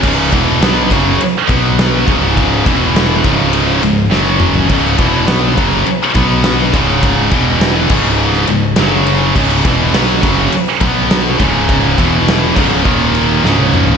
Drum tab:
CC |x---------------|----------------|x---------------|------x---------|
RD |--x-x-x-x-x-x-x-|x-x-x-x-x-x-----|--x-x-x-x-x-x-x-|x-x-x-----x-x-x-|
SD |----o-------o---|----o-------o---|----o-------o---|----o----o--o---|
T1 |----------------|----------------|----------------|----------------|
T2 |----------------|--------------o-|----------------|----------------|
FT |----------------|---------------o|----------------|----------------|
BD |o-o---o---o---o-|o-o---o---------|o-o---o---o---o-|o-o---o---------|

CC |x---------------|------x---------|
RD |--x-x-x-x-x-x-x-|x-x-x-----x-----|
SD |----o-------o---|----o-------o---|
T1 |----------------|-------------o--|
T2 |----------------|--------------o-|
FT |----------------|---------------o|
BD |o-o---o---o---o-|o-o---o-o-------|